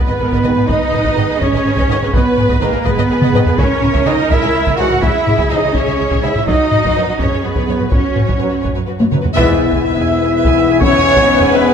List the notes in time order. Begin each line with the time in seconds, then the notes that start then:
Already playing: B3 B4
0.08 G#1 B4 D#5
0.20 G#1 G#4 A#4 B4
0.32 G#1 B4 D#5, taiko
0.43 G#1 G#2 D#3 G#4 B4 D#5
0.56 G#1 G#4 B4, taiko low-mid
0.68 G#1 D#4 B4 D#5, taiko
0.92 G#1 G#4 B4, taiko low-mid
1.05 G#1 B4 D#5, taiko
1.15 G#1 G#2 D#3 G#4 B4 D#5
1.29 G#1 G#4 B4
1.40 G#1 C#4 G#4 B4 C#5 D#5, taiko
1.53 G#1 B4 D#5
1.65 G#1 G#4 B4
1.77 G#1 B4 D#5, taiko
1.88 G#1 G#2 D#3 G#4 B4 D#5
2.01 G#1 G#4 B4, taiko low-mid
2.13 G#1 B3 B4 D#5, taiko
2.37 G#1 G#4 B4, taiko low-mid
2.49 G#1 B4 D#5, taiko
2.60 G#1 G#2 D#3 A#3 G#4 A#4 B4 D#5
2.73 G#1 G#4 B4
2.84 G#1 B3 G#4 B4 D#5, taiko
2.98 G#1 B4 D#5
3.09 G#1 G#4 B4
3.21 G#1 B4 D#5, taiko mid
3.33 G#1 G#2 D#3 G#4 B4 D#5, taiko low-mid
3.46 G#1 G#4 B4, taiko low
3.57 C#2 C#4 G#4 A#4 C#5 E5, taiko
3.82 C#2 E4 C#5, taiko low-mid
3.94 C#2 G#4 E5, taiko
4.06 C#2 G#2 E3 D#4 G#4 C#5 D#5 E5
4.18 C#2 E4 C#5
4.30 C#2 E4 G#4 E5, taiko
4.42 C#2 G#4 E5
4.54 C#2 E4 C#5
4.66 C#2 G#4 E5, taiko
4.78 C#2 G#2 E3 F#4 G#4 C#5 E5 F#5
4.90 C#2 E4 C#5, taiko low-mid
5.00 C#2 E4 G#4 E5, taiko
5.26 C#2 E4 C#5, taiko low-mid
5.38 C#2 G#4 E5, taiko
5.50 C#2 G#2 E3 D#4 G#4 C#5 D#5 E5
5.64 C#2 E4 C#5
5.74 C#2 C#4 G#4 C#5 E5, taiko
5.87 C#2 G#4 E5
5.99 C#2 E4 C#5
6.10 C#2 G#4 E5, taiko
6.23 C#2 G#2 E3 E4 G#4 C#5 E5
6.35 C#2 E4 C#5, taiko low-mid
6.47 F#2 D#4 F#4 B4 C#5 D#5, taiko
6.72 F#2 F#4 B4, taiko low-mid
6.84 F#2 B4 C#5, taiko
6.96 F#2 F#3 B4 C#5
7.08 F#2 F#4 B4
7.19 F#2 C#4 G#4 B4 C#5, taiko
7.31 F#2 B4 C#5
7.43 F#2 B3 F#4 B4
7.55 F#2 B4 C#5, taiko
7.67 F#2 F#3 B4 C#5
7.79 F#2 F#4 B4, taiko low-mid
7.90 F#2 C#4 F#4 B4 C#5, taiko
8.15 F#2 F#4 B4, taiko low-mid
8.27 F#2 B4 C#5, taiko
8.39 F#2 F#3 B4 C#5
8.50 F#2 F#4 B4
8.62 F#2 B4 C#5, taiko
8.75 F#2 B4 C#5
8.87 F#2 F#4 B4
8.99 F#2 B4 C#5, taiko high
9.12 F#2 F#3 B4 C#5, taiko mid
9.22 F#2 F#4 B4, taiko low
9.35 E1 E2 G#2 B3 E4 B4 E5, taiko
9.48 G#4 G#5, taiko low
9.60 B4 E5
9.72 G#4 G#5, taiko
9.84 B4 E5
9.97 G#4 G#5, taiko low
10.09 B4 E5
10.22 G#4 G#5
10.34 B4 E5
10.45 G#4 G#5, taiko
10.58 B4 E5
10.70 G#4 G#5
10.81 C#4 B4 C#5 E5, taiko
10.93 G#4 G#5, taiko low
11.06 B4 E5
11.17 G#4 G#5, taiko
11.28 B4 E5
11.41 G#4 G#5, taiko low
11.52 B3 B4 E5
11.65 G#4 G#5